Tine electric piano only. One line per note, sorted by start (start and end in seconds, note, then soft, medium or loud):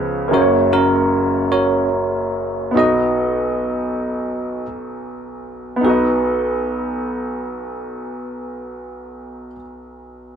0.33 0.71 F#4 medium
0.33 0.72 A#4 medium
0.33 0.73 C#5 medium
0.72 1.88 C#4 medium
0.72 1.51 F#4 medium
0.72 1.51 A#4 medium
1.52 2.73 F#4 medium
1.52 2.73 A#4 soft
1.52 2.80 C#5 medium
2.77 4.66 F#4 medium
2.77 4.66 B4 medium
2.77 4.65 D#5 medium
5.85 9.55 B4 medium